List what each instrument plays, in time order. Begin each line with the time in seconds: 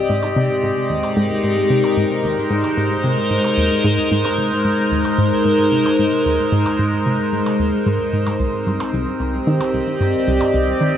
Already playing: ambient pad G#3 C4 G4 D5 D#5
0.09 synth arpeggio sound G#2, ambient pad D#4, shaker
0.23 percussion blips, shaker
0.36 synth arpeggio sound C3, shaker
0.50 shaker
0.63 synth arpeggio sound G#2
0.76 shaker
0.90 synth arpeggio sound D#2, shaker
0.99 ambient pad A#4
1.03 percussion blips, shaker
1.17 synth arpeggio sound G#2, shaker
1.30 shaker
1.43 synth arpeggio sound G#2, shaker
1.57 shaker
1.70 synth arpeggio sound C3, shaker
1.84 percussion blips, shaker
1.89 ambient pad C5
1.97 synth arpeggio sound G#2, shaker
2.10 shaker
2.24 synth arpeggio sound D#2, shaker
2.37 shaker
2.51 synth arpeggio sound G#2, shaker
2.64 percussion blips, shaker
2.78 synth arpeggio sound G#2
2.91 shaker
3.04 synth arpeggio sound C3, shaker
3.18 shaker
3.31 synth arpeggio sound G#2, shaker
3.44 percussion blips, shaker
3.57 synth arpeggio sound D#2, shaker
3.71 shaker
3.84 synth arpeggio sound G#2, shaker
3.98 shaker
4.11 synth arpeggio sound G#2, shaker
4.25 percussion blips, shaker
4.38 synth arpeggio sound C3, shaker
4.52 shaker
4.65 synth arpeggio sound G#2, shaker
4.78 shaker
4.92 synth arpeggio sound D#2
5.05 percussion blips, shaker
5.18 synth arpeggio sound G#2, shaker
5.32 shaker
5.45 synth arpeggio sound G#2, shaker
5.59 shaker
5.72 synth arpeggio sound C3, shaker
5.86 percussion blips, shaker
5.99 synth arpeggio sound G#2, shaker
6.13 shaker
6.26 synth arpeggio sound D#2, shaker
6.39 shaker
6.52 synth arpeggio sound G#2, shaker
6.66 percussion blips, shaker
6.79 synth arpeggio sound G#2, shaker
6.93 shaker
7.06 synth arpeggio sound C3, shaker
7.20 shaker
7.33 synth arpeggio sound G#2, shaker
7.46 percussion blips, shaker
7.60 synth arpeggio sound D#2, shaker
7.73 shaker
7.86 synth arpeggio sound G#2, shaker
8.00 shaker
8.13 synth arpeggio sound G#2, shaker
8.27 percussion blips, shaker
8.40 synth arpeggio sound C2, ambient pad C4, shaker
8.53 shaker
8.67 synth arpeggio sound G2, shaker
8.80 percussion blips, shaker
8.91 synth arpeggio sound C2, ambient pad G4, shaker
9.07 shaker
9.20 synth arpeggio sound C2
9.34 ambient pad D#5, shaker
9.47 synth arpeggio sound D#3, shaker
9.61 percussion blips, shaker
9.74 synth arpeggio sound C2, shaker
9.82 ambient pad D5
9.87 shaker
10.01 synth arpeggio sound G2, shaker
10.14 shaker
10.27 synth arpeggio sound C2, shaker
10.41 percussion blips, shaker
10.54 synth arpeggio sound C2, shaker
10.68 shaker
10.81 synth arpeggio sound D#3, shaker